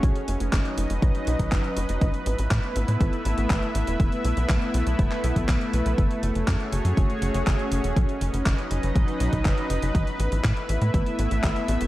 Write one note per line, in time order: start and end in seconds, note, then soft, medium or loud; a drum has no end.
0.00 0.12 B1 loud
0.00 2.00 F#3 medium
0.00 1.98 C#4 medium
0.00 2.00 D#4 medium
0.00 5.94 B4 medium
0.00 2.00 D#5 medium
0.00 kick loud
0.00 closed hi-hat soft
0.16 closed hi-hat soft
0.28 0.37 F#1 medium
0.28 closed hi-hat medium
0.40 0.49 F#1 medium
0.40 closed hi-hat medium
0.53 0.62 F#1 loud
0.53 kick loud
0.53 clap loud
0.53 closed hi-hat medium
0.65 closed hi-hat soft
0.77 0.87 F#1 medium
0.77 closed hi-hat medium
0.90 0.99 F#1 medium
0.90 closed hi-hat soft
1.02 1.11 B1 loud
1.02 kick loud
1.02 closed hi-hat medium
1.15 closed hi-hat soft
1.27 1.36 B1 medium
1.27 closed hi-hat medium
1.39 1.49 B1 medium
1.39 kick medium
1.39 closed hi-hat medium
1.52 1.61 F#1 loud
1.52 kick loud
1.52 clap loud
1.52 closed hi-hat medium
1.64 closed hi-hat soft
1.77 1.86 F#1 medium
1.77 closed hi-hat medium
1.89 1.98 F#1 medium
1.89 closed hi-hat medium
2.01 2.11 A1 loud
2.01 3.98 A3 medium
2.01 3.98 B3 medium
2.01 3.98 E4 medium
2.01 5.94 E5 medium
2.01 kick loud
2.01 closed hi-hat soft
2.14 closed hi-hat soft
2.26 2.35 A1 medium
2.26 closed hi-hat medium
2.38 2.48 A1 medium
2.38 closed hi-hat medium
2.51 2.60 A2 loud
2.51 kick loud
2.51 clap loud
2.51 closed hi-hat medium
2.63 closed hi-hat soft
2.76 2.85 A1 medium
2.76 closed hi-hat medium
2.88 2.97 A2 medium
2.88 closed hi-hat soft
3.01 3.10 A1 loud
3.01 kick loud
3.01 closed hi-hat soft
3.13 closed hi-hat soft
3.25 3.35 A1 loud
3.25 closed hi-hat medium
3.38 3.47 A1 medium
3.38 closed hi-hat soft
3.50 3.59 A1 loud
3.50 kick loud
3.50 clap loud
3.50 closed hi-hat soft
3.63 closed hi-hat soft
3.75 3.84 A1 medium
3.75 closed hi-hat medium
3.87 3.97 E1 medium
3.87 closed hi-hat soft
4.00 4.09 E1 loud
4.00 7.93 A3 medium
4.00 5.96 B3 medium
4.00 5.96 E4 medium
4.00 kick loud
4.00 closed hi-hat soft
4.12 closed hi-hat soft
4.24 4.34 B1 medium
4.24 closed hi-hat medium
4.37 4.46 B1 medium
4.37 closed hi-hat soft
4.49 4.58 B1 loud
4.49 kick loud
4.49 clap loud
4.49 closed hi-hat soft
4.62 closed hi-hat soft
4.74 4.83 B1 medium
4.74 closed hi-hat medium
4.87 4.96 B1 medium
4.87 closed hi-hat soft
4.99 5.08 E1 loud
4.99 kick loud
4.99 closed hi-hat soft
5.11 clap soft
5.11 closed hi-hat soft
5.24 5.33 B1 medium
5.24 closed hi-hat medium
5.36 5.45 B1 medium
5.36 kick medium
5.36 closed hi-hat soft
5.49 5.58 B1 loud
5.49 kick loud
5.49 clap loud
5.49 closed hi-hat soft
5.61 closed hi-hat soft
5.73 5.82 B1 medium
5.73 closed hi-hat medium
5.86 5.95 B1 medium
5.86 closed hi-hat soft
5.98 6.07 F#1 medium
5.98 9.91 C#4 medium
5.98 7.95 F#4 medium
5.98 7.95 G#4 medium
5.98 7.95 C#5 medium
5.98 kick loud
5.98 closed hi-hat soft
6.11 closed hi-hat soft
6.23 6.32 F#1 medium
6.23 closed hi-hat medium
6.35 6.44 F#1 medium
6.35 closed hi-hat soft
6.48 6.57 F#2 loud
6.48 kick loud
6.48 clap loud
6.48 closed hi-hat soft
6.60 closed hi-hat soft
6.72 6.82 F#1 medium
6.72 closed hi-hat medium
6.85 6.94 F#2 medium
6.85 closed hi-hat soft
6.97 7.06 F#1 loud
6.97 kick loud
6.97 closed hi-hat medium
7.10 closed hi-hat soft
7.22 7.31 F#1 medium
7.22 closed hi-hat medium
7.34 7.44 F#1 medium
7.34 closed hi-hat soft
7.47 7.56 F#1 loud
7.47 kick loud
7.47 clap loud
7.47 closed hi-hat soft
7.59 closed hi-hat soft
7.72 7.81 F#1 medium
7.72 closed hi-hat medium
7.84 7.93 E1 medium
7.84 closed hi-hat soft
7.96 8.06 B1 medium
7.96 9.93 F#3 medium
7.96 9.93 D#4 medium
7.96 11.87 B4 medium
7.96 9.93 D#5 medium
7.96 kick loud
7.96 closed hi-hat soft
8.09 closed hi-hat soft
8.21 8.30 F#1 medium
8.21 closed hi-hat medium
8.34 8.43 F#1 medium
8.34 closed hi-hat soft
8.46 8.55 F#1 loud
8.46 kick loud
8.46 clap loud
8.46 closed hi-hat medium
8.58 closed hi-hat soft
8.71 8.80 F#1 medium
8.71 closed hi-hat medium
8.83 8.92 F#1 medium
8.83 closed hi-hat medium
8.96 9.05 B1 loud
8.96 kick loud
8.96 closed hi-hat medium
9.08 closed hi-hat soft
9.20 9.30 B1 medium
9.20 closed hi-hat medium
9.33 9.42 B1 medium
9.33 kick medium
9.33 closed hi-hat soft
9.45 9.54 F#1 loud
9.45 kick loud
9.45 clap loud
9.45 closed hi-hat soft
9.58 closed hi-hat soft
9.70 9.79 F#1 medium
9.70 closed hi-hat medium
9.82 9.92 F#1 medium
9.82 closed hi-hat medium
9.95 10.04 A1 loud
9.95 11.87 A3 medium
9.95 11.87 B3 medium
9.95 11.87 E4 medium
9.95 11.87 E5 medium
9.95 kick loud
9.95 closed hi-hat soft
10.07 closed hi-hat soft
10.19 10.29 A1 medium
10.19 closed hi-hat medium
10.32 10.41 A1 medium
10.32 closed hi-hat medium
10.44 10.54 A2 loud
10.44 kick loud
10.44 clap loud
10.44 closed hi-hat medium
10.57 closed hi-hat soft
10.69 10.78 A1 medium
10.69 closed hi-hat medium
10.82 10.91 A2 medium
10.82 closed hi-hat medium
10.94 11.03 A1 loud
10.94 kick loud
10.94 closed hi-hat medium
11.06 closed hi-hat soft
11.19 11.28 A1 medium
11.19 closed hi-hat loud
11.31 11.40 A1 medium
11.31 closed hi-hat medium
11.43 11.53 A1 loud
11.43 kick loud
11.43 clap loud
11.43 closed hi-hat medium
11.56 closed hi-hat soft
11.68 11.78 A1 medium
11.68 closed hi-hat loud
11.81 11.87 E1 medium
11.81 closed hi-hat medium